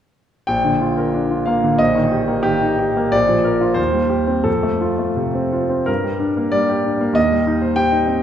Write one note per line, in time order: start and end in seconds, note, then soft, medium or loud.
0.47 1.76 A#1 soft
0.47 1.47 G5 medium
0.65 0.91 D3 soft
0.81 1.08 F4 soft
0.97 1.24 A#4 soft
1.14 1.40 D4 soft
1.31 1.57 F4 soft
1.46 1.73 A#3 soft
1.46 1.79 F5 medium
1.64 1.80 D3 soft
1.78 3.10 A#1 soft
1.78 2.43 D#5 medium
1.95 2.21 D#3 soft
2.12 2.38 G4 soft
2.28 2.54 A#3 soft
2.43 2.72 D#3 soft
2.43 2.77 G4 medium
2.62 2.90 D#4 soft
2.79 3.07 G4 soft
2.97 3.14 A#3 soft
3.12 3.75 A#1 soft
3.12 3.77 D5 medium
3.29 3.55 F3 soft
3.44 3.70 A#4 soft
3.61 3.77 F4 soft
3.74 4.43 D#2 soft
3.74 4.45 C5 medium
3.93 4.21 G3 soft
4.10 4.38 G4 soft
4.27 4.46 C4 soft
4.44 5.83 F2 soft
4.44 5.16 A4 medium
4.63 4.92 A3 soft
4.81 5.10 F4 soft
4.99 5.28 A3 soft
5.16 5.46 C3 soft
5.35 5.64 C4 soft
5.52 5.81 F4 soft
5.70 5.87 C4 soft
5.86 7.12 G2 soft
5.86 6.52 A#4 medium
6.04 6.30 G3 soft
6.20 6.46 D4 soft
6.37 6.63 A#3 soft
6.52 6.78 G3 soft
6.52 7.15 D5 medium
6.69 6.94 G4 soft
6.84 7.09 D4 soft
7.01 7.16 A#3 soft
7.13 8.23 D#2 soft
7.13 7.77 D#5 medium
7.32 7.56 G3 soft
7.47 7.71 D#4 soft
7.62 7.86 C5 soft
7.76 8.02 G4 soft
7.76 8.23 G5 medium
7.92 8.17 D#4 soft
8.07 8.23 C4 soft